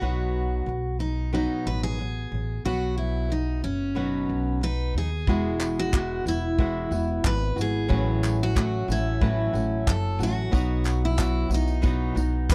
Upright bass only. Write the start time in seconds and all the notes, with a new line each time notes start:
0.02 B1
0.67 B1
1.66 A1
2.32 A1
2.65 B1
3.63 F#1
4.29 B1
4.94 D#2
5.27 E1
6.26 E1
6.91 E1
7.24 G#1
7.57 G#1
7.90 A1
8.88 A1
9.54 A1
9.87 F#1
10.19 A1
10.53 B1
11.49 B1
12.16 B1
12.49 D#2